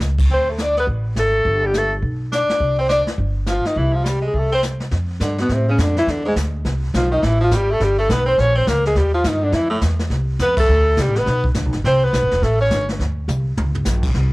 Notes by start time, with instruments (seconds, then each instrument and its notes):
0.00 upright bass C#2, snare, hi-hat pedal
0.19 kick, crash
0.30 upright bass D2, tenor saxophone C4, alto saxophone C5, brush sweep, kick
0.49 tenor saxophone A3, alto saxophone A4
0.58 tenor saxophone D4, snare, hi-hat pedal
0.63 alto saxophone D5
0.77 tenor saxophone B3, alto saxophone B4, snare
0.87 upright bass A1, brush sweep, kick
1.16 upright bass G#1, tenor saxophone A3, alto saxophone A4, snare, hi-hat pedal
1.45 upright bass G1, brush sweep, kick
1.64 tenor saxophone G3, alto saxophone G4
1.74 tenor saxophone A3, alto saxophone A4, snare, hi-hat pedal
2.03 upright bass B1, brush sweep, kick
2.32 tenor saxophone D4, alto saxophone D5, snare, hi-hat pedal
2.49 muted upright bass stroke, snare
2.60 upright bass C2, brush sweep, kick
2.78 tenor saxophone C4, alto saxophone C5
2.89 tenor saxophone D4, alto saxophone D5, snare, hi-hat pedal
3.07 muted upright bass stroke, snare
3.18 upright bass G1, brush sweep, kick
3.47 tenor saxophone F3, alto saxophone F4, snare, hi-hat pedal
3.65 tenor saxophone D#3, alto saxophone D#4, muted upright bass stroke, snare
3.76 upright bass C2, tenor saxophone E3, alto saxophone E4, brush sweep, kick
3.93 tenor saxophone F3, alto saxophone F4
4.04 tenor saxophone G3, alto saxophone G4, snare, hi-hat pedal
4.22 tenor saxophone G#3
4.27 alto saxophone G#4
4.33 upright bass C2, tenor saxophone A3, brush sweep, kick
4.39 alto saxophone A4
4.52 tenor saxophone C4, alto saxophone C5
4.63 snare, hi-hat pedal
4.80 snare
4.91 upright bass F2, brush sweep, kick, snare
5.20 upright bass G2, tenor saxophone D3, kick, snare, hi-hat pedal
5.24 alto saxophone D4
5.38 tenor saxophone B2, alto saxophone B3, snare
5.49 upright bass A2, tenor saxophone C3, brush sweep, kick, snare
5.54 alto saxophone C4
5.69 tenor saxophone C#3, alto saxophone C#4
5.78 upright bass F2, tenor saxophone D3, alto saxophone D4, kick, snare, hi-hat pedal
5.97 tenor saxophone E3, alto saxophone E4, snare
6.07 upright bass E2, tenor saxophone D3, alto saxophone D4, brush sweep, kick, snare
6.25 tenor saxophone G#2, alto saxophone G#3
6.36 upright bass D2, kick, snare, hi-hat pedal
6.65 upright bass C2, brush sweep, kick, snare
6.94 upright bass B1, tenor saxophone F3, alto saxophone F4, kick, snare, hi-hat pedal
7.12 tenor saxophone D#3, alto saxophone D#4
7.22 upright bass A1, tenor saxophone E3, alto saxophone E4, brush sweep, kick, snare
7.41 tenor saxophone F3, alto saxophone F4
7.51 upright bass G#1, tenor saxophone G3, kick, snare, hi-hat pedal
7.56 alto saxophone G4
7.71 tenor saxophone A3, alto saxophone A4
7.80 upright bass G1, tenor saxophone G3, brush sweep, kick, snare
7.85 alto saxophone G4
7.98 tenor saxophone A3, alto saxophone A4
8.09 upright bass B1, tenor saxophone B3, alto saxophone B4, kick, snare, hi-hat pedal
8.26 tenor saxophone C4, alto saxophone C5
8.38 upright bass A#1, tenor saxophone C#4, alto saxophone C#5, brush sweep, kick, snare
8.55 tenor saxophone C4, alto saxophone C5
8.67 upright bass C#2, tenor saxophone A#3, alto saxophone A#4, kick, snare, hi-hat pedal
8.85 tenor saxophone G#3, alto saxophone G#4, snare
8.95 upright bass D#2, tenor saxophone G3, alto saxophone G4, brush sweep, kick, snare
9.14 tenor saxophone F3, alto saxophone F4
9.24 upright bass G2, tenor saxophone D#3, alto saxophone D#4, kick, snare, hi-hat pedal
9.42 tenor saxophone D3, alto saxophone D4
9.52 upright bass F2, tenor saxophone E3, alto saxophone E4, brush sweep, kick, snare
9.70 tenor saxophone A2, alto saxophone A3
9.81 upright bass E2, kick, snare, hi-hat pedal
9.99 snare
10.10 upright bass C2, brush sweep, kick, snare
10.39 upright bass F2, tenor saxophone B3, alto saxophone B4, kick, snare, hi-hat pedal
10.57 tenor saxophone A3, alto saxophone A4, kick, crash
10.68 upright bass D2, brush sweep
10.97 upright bass C2, tenor saxophone G3, kick, snare, hi-hat pedal
11.02 alto saxophone G4
11.07 upright bass A1
11.16 upright bass F1, tenor saxophone B3, alto saxophone B4, snare
11.26 upright bass B1, brush sweep, kick, snare
11.44 kick
11.54 upright bass D2, kick, snare, hi-hat pedal
11.66 upright bass B1
11.73 upright bass G1, snare
11.84 upright bass C2, tenor saxophone C4, alto saxophone C5, brush sweep, kick, snare
12.04 tenor saxophone B3, alto saxophone B4
12.13 upright bass B1, kick, snare, hi-hat pedal
12.22 upright bass G1
12.31 upright bass E1, snare
12.42 upright bass A1, tenor saxophone A3, alto saxophone A4, brush sweep, kick, snare
12.61 tenor saxophone C#4, alto saxophone C#5
12.70 upright bass G1, kick, snare, hi-hat pedal
12.89 snare
12.99 upright bass D2, brush sweep, kick, snare
13.28 upright bass C2, hi-hat pedal, mid tom
13.57 upright bass C#2, mid tom
13.75 floor tom
13.85 upright bass A#1, snare, hi-hat pedal
14.03 kick, crash
14.14 upright bass C2, brush sweep, kick, snare